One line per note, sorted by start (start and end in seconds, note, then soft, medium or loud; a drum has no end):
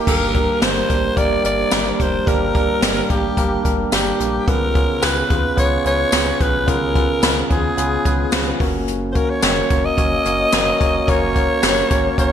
0.06 0.47 G1 loud
0.06 0.86 G2 medium
0.06 0.28 G3 loud
0.06 0.28 A#3 medium
0.06 0.29 D4 medium
0.06 0.29 G4 medium
0.06 0.29 A#4 loud
0.06 0.65 A#4 loud
0.06 kick loud
0.06 crash loud
0.34 0.56 G3 medium
0.34 0.56 A#3 medium
0.34 0.56 D4 medium
0.34 0.56 G4 medium
0.34 0.56 A#4 medium
0.34 kick medium
0.34 closed hi-hat medium
0.61 0.82 G1 loud
0.61 0.83 G3 medium
0.61 0.83 A#3 medium
0.61 0.83 D4 medium
0.61 0.83 G4 medium
0.61 0.84 A#4 medium
0.61 1.19 C5 loud
0.61 snare loud
0.61 closed hi-hat medium
0.61 tambourine medium
0.88 1.10 A1 medium
0.88 1.10 G3 medium
0.88 1.11 A#3 medium
0.88 1.11 D4 medium
0.88 1.11 G4 medium
0.88 1.11 A#4 medium
0.88 kick medium
0.88 closed hi-hat medium
1.16 1.37 G1 loud
1.16 1.38 G3 medium
1.16 1.38 A#3 medium
1.16 1.39 D4 medium
1.16 1.39 G4 medium
1.16 1.39 A#4 loud
1.16 1.45 D5 loud
1.16 kick loud
1.16 closed hi-hat medium
1.43 1.64 G1 loud
1.43 1.65 G3 medium
1.43 1.66 A#3 medium
1.43 1.66 D4 medium
1.43 1.66 G4 medium
1.43 1.66 A#4 medium
1.43 2.03 D5 loud
1.43 closed hi-hat medium
1.71 1.92 G1 loud
1.71 1.93 G3 medium
1.71 1.93 A#3 medium
1.71 1.93 D4 medium
1.71 1.94 G4 medium
1.71 1.94 A#4 medium
1.71 snare loud
1.71 closed hi-hat medium
1.71 tambourine medium
1.99 2.20 F1 loud
1.99 2.21 G3 medium
1.99 2.21 A#3 medium
1.99 2.21 D4 medium
1.99 2.21 G4 medium
1.99 2.21 A#4 medium
1.99 2.29 C5 loud
1.99 kick medium
1.99 closed hi-hat medium
2.26 2.67 G1 loud
2.26 3.06 G2 medium
2.26 2.48 G3 loud
2.26 2.49 A#3 medium
2.26 2.48 D4 medium
2.26 2.49 G4 medium
2.26 2.49 A#4 loud
2.26 3.12 A#4 loud
2.26 kick loud
2.26 closed hi-hat medium
2.54 2.76 G3 medium
2.54 2.76 A#3 medium
2.54 2.76 D4 medium
2.54 2.76 G4 medium
2.54 2.77 A#4 medium
2.54 kick loud
2.54 closed hi-hat medium
2.82 3.02 G1 loud
2.82 3.04 G3 medium
2.82 3.04 A#3 medium
2.82 3.04 D4 medium
2.82 3.04 G4 medium
2.82 3.04 A#4 medium
2.82 snare loud
2.82 closed hi-hat medium
2.82 tambourine medium
3.09 3.30 A1 medium
3.09 3.31 G3 medium
3.09 3.31 A#3 medium
3.09 3.31 D4 medium
3.09 3.32 G4 medium
3.09 3.66 G4 medium
3.09 3.32 A#4 medium
3.09 kick medium
3.09 closed hi-hat medium
3.37 3.57 G1 loud
3.37 3.59 G3 medium
3.37 3.59 A#3 medium
3.37 3.59 D4 medium
3.37 3.59 G4 medium
3.37 3.59 A#4 loud
3.37 kick loud
3.37 closed hi-hat medium
3.64 3.85 G1 medium
3.64 3.86 G3 medium
3.64 3.86 A#3 medium
3.64 3.86 D4 medium
3.64 3.86 G4 medium
3.64 3.87 A#4 medium
3.64 kick medium
3.64 closed hi-hat medium
3.92 4.12 G1 loud
3.92 4.14 G3 medium
3.92 4.14 A#3 medium
3.92 4.14 D4 medium
3.92 4.14 G4 medium
3.92 4.50 G4 medium
3.92 4.14 A#4 medium
3.92 snare loud
3.92 closed hi-hat medium
3.92 tambourine medium
4.20 4.40 A#1 medium
4.20 4.41 G3 medium
4.20 4.42 A#3 medium
4.20 4.42 D4 medium
4.20 4.42 G4 medium
4.20 4.42 A#4 medium
4.20 closed hi-hat medium
4.47 4.87 C#2 loud
4.47 5.26 C#3 medium
4.47 4.69 B3 loud
4.47 4.69 C#4 medium
4.47 4.69 F4 medium
4.47 4.69 G#4 medium
4.47 5.06 A#4 loud
4.47 4.70 B4 loud
4.47 kick loud
4.47 closed hi-hat medium
4.74 4.96 B3 medium
4.74 4.96 C#4 medium
4.74 4.97 F4 medium
4.74 4.97 G#4 medium
4.74 4.97 C#5 medium
4.74 kick medium
4.74 closed hi-hat medium
5.02 5.23 C#2 loud
5.02 5.24 B3 medium
5.02 5.24 C#4 medium
5.02 5.24 F4 medium
5.02 5.24 G#4 medium
5.02 5.24 B4 medium
5.02 5.58 B4 loud
5.02 snare loud
5.02 closed hi-hat medium
5.02 tambourine medium
5.29 5.50 D#2 loud
5.29 5.51 B3 medium
5.29 5.51 C#4 medium
5.29 5.51 F4 medium
5.29 5.51 G#4 medium
5.29 5.52 B4 medium
5.29 kick medium
5.29 closed hi-hat medium
5.57 5.77 C#2 loud
5.57 5.79 B3 loud
5.57 5.79 C#4 loud
5.57 5.79 F4 medium
5.57 5.79 G#4 medium
5.57 5.79 B4 loud
5.57 5.84 C#5 loud
5.57 kick loud
5.57 closed hi-hat loud
5.85 6.05 C#2 medium
5.85 6.06 B3 medium
5.85 6.07 C#4 medium
5.85 6.07 F4 medium
5.85 6.07 G#4 medium
5.85 6.07 B4 medium
5.85 6.43 C#5 loud
5.85 closed hi-hat medium
6.12 6.32 C#2 loud
6.12 6.34 B3 medium
6.12 6.34 C#4 medium
6.12 6.34 F4 medium
6.12 6.34 G#4 medium
6.12 6.34 B4 medium
6.12 snare loud
6.12 closed hi-hat medium
6.12 tambourine medium
6.39 6.69 B1 medium
6.39 6.61 B3 medium
6.39 6.61 C#4 medium
6.39 6.61 F4 medium
6.39 6.62 G#4 medium
6.39 6.71 B4 loud
6.39 6.62 C#5 medium
6.39 kick medium
6.39 closed hi-hat medium
6.66 7.07 C#2 loud
6.66 7.46 C#3 medium
6.66 6.89 B3 medium
6.66 6.89 C#4 medium
6.66 6.89 F4 medium
6.66 6.89 G#4 medium
6.66 7.44 A#4 loud
6.66 6.89 B4 loud
6.66 kick loud
6.66 closed hi-hat medium
6.94 7.16 B3 medium
6.94 7.16 C#4 medium
6.94 7.17 F4 medium
6.94 7.17 G#4 medium
6.94 7.17 B4 medium
6.94 kick medium
6.94 closed hi-hat medium
7.22 7.42 C#2 loud
7.22 7.44 B3 medium
7.22 7.44 C#4 medium
7.22 7.44 F4 medium
7.22 7.44 G#4 medium
7.22 7.44 B4 medium
7.22 snare loud
7.22 closed hi-hat medium
7.22 tambourine medium
7.44 7.53 A#4 medium
7.50 7.70 D#2 medium
7.50 7.71 B3 medium
7.50 7.71 C#4 medium
7.50 7.72 F4 medium
7.50 7.72 G#4 medium
7.50 8.61 G#4 medium
7.50 7.72 B4 medium
7.50 kick medium
7.50 closed hi-hat medium
7.77 7.97 C#2 loud
7.77 7.99 B3 medium
7.77 7.99 C#4 medium
7.77 7.99 F4 medium
7.77 7.99 G#4 medium
7.77 7.99 B4 loud
7.77 closed hi-hat medium
8.05 8.25 C#2 loud
8.05 8.27 B3 medium
8.05 8.27 C#4 medium
8.05 8.27 F4 medium
8.05 8.27 G#4 medium
8.05 8.27 B4 medium
8.05 kick loud
8.05 closed hi-hat medium
8.32 8.53 C#2 loud
8.32 8.54 B3 medium
8.32 8.54 C#4 medium
8.32 8.54 F4 medium
8.32 8.55 G#4 medium
8.32 8.55 B4 loud
8.32 snare loud
8.32 closed hi-hat medium
8.32 tambourine medium
8.60 9.20 F#1 loud
8.60 9.04 A#3 medium
8.60 9.04 C#4 medium
8.60 9.04 F#4 medium
8.60 9.05 A#4 medium
8.60 9.05 C#5 loud
8.60 kick loud
8.60 open hi-hat medium
8.88 closed hi-hat medium
9.12 9.36 A#3 medium
9.12 9.37 C#4 medium
9.12 9.37 F#4 medium
9.12 9.37 A#4 medium
9.12 9.18 C5 medium
9.12 9.37 C#5 medium
9.12 kick medium
9.12 closed hi-hat medium
9.16 9.32 A#4 medium
9.30 9.43 C#5 medium
9.42 9.63 F#1 loud
9.42 9.64 A#3 medium
9.42 9.64 C#4 medium
9.42 9.65 F#4 medium
9.42 9.65 A#4 medium
9.42 9.87 C#5 loud
9.42 9.65 C#5 medium
9.42 snare loud
9.42 closed hi-hat medium
9.42 tambourine medium
9.70 9.90 F#1 medium
9.70 9.92 A#3 medium
9.70 9.92 C#4 medium
9.70 9.92 F#4 medium
9.70 9.92 A#4 medium
9.70 9.92 C#5 medium
9.70 kick medium
9.70 closed hi-hat medium
9.85 11.11 D#5 loud
9.97 10.18 F#1 loud
9.97 10.19 A#3 loud
9.97 10.19 C#4 medium
9.97 10.19 F#4 medium
9.97 10.20 A#4 medium
9.97 10.20 C#5 loud
9.97 kick loud
9.97 closed hi-hat medium
10.25 10.45 F#1 medium
10.25 10.47 A#3 medium
10.25 10.47 C#4 medium
10.25 10.47 F#4 medium
10.25 10.47 A#4 medium
10.25 10.47 C#5 medium
10.25 closed hi-hat medium
10.52 10.73 F#1 loud
10.52 10.74 A#3 medium
10.52 10.74 C#4 medium
10.52 10.74 F#4 medium
10.52 10.75 A#4 medium
10.52 10.75 C#5 loud
10.52 snare loud
10.52 closed hi-hat medium
10.52 tambourine medium
10.80 11.00 F1 medium
10.80 11.02 A#3 medium
10.80 11.02 C#4 medium
10.80 11.02 F#4 medium
10.80 11.02 A#4 medium
10.80 11.02 C#5 medium
10.80 kick loud
10.80 closed hi-hat medium
11.07 11.48 F#1 loud
11.07 11.29 A#3 loud
11.07 11.29 C#4 medium
11.07 11.29 F#4 medium
11.07 11.30 A#4 medium
11.07 11.30 C#5 loud
11.07 12.19 C#5 loud
11.07 kick loud
11.07 closed hi-hat medium
11.35 11.57 A#3 medium
11.35 11.57 C#4 medium
11.35 11.57 F#4 medium
11.35 11.57 A#4 medium
11.35 11.57 C#5 medium
11.35 kick medium
11.35 closed hi-hat medium
11.62 11.83 F#1 loud
11.62 11.84 A#3 medium
11.62 11.84 C#4 medium
11.62 11.84 F#4 medium
11.62 11.84 A#4 medium
11.62 11.85 C#5 medium
11.62 snare loud
11.62 closed hi-hat medium
11.62 tambourine medium
11.90 12.11 G#1 medium
11.90 12.12 A#3 medium
11.90 12.12 C#4 medium
11.90 12.12 F#4 medium
11.90 12.12 A#4 medium
11.90 12.12 C#5 medium
11.90 kick medium
11.90 closed hi-hat medium
12.18 12.32 F#1 loud
12.18 12.32 A#3 loud
12.18 12.32 C#4 medium
12.18 12.32 F#4 medium
12.18 12.32 A#4 medium
12.18 12.32 C#5 loud
12.18 kick loud
12.18 closed hi-hat medium